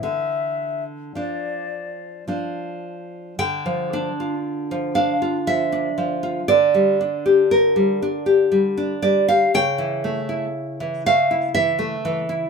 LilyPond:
<<
  \new Staff \with { instrumentName = "Flute" } { \time 3/4 \key d \minor \tempo 4 = 59 e''8. r16 d''4 r4 | r2. | r2. | r2. | }
  \new Staff \with { instrumentName = "Nylon-string guitar" } { \time 3/4 \key d \minor << { r2. | g''4. f''8 e''4 | d''4 bes'4. d''16 f''16 | g''4. f''8 e''4 | } \\ { d4 <f d'>4 <f d'>4 | d16 f16 d'16 f'8 f16 d'16 f'16 f16 d'16 f16 f'16 | d16 g16 d'16 g'8 g16 d'16 g'16 g16 d'16 g16 g'16 | cis16 e16 a16 e'8 e16 a16 e'16 e16 a16 e16 e'16 | } >> }
>>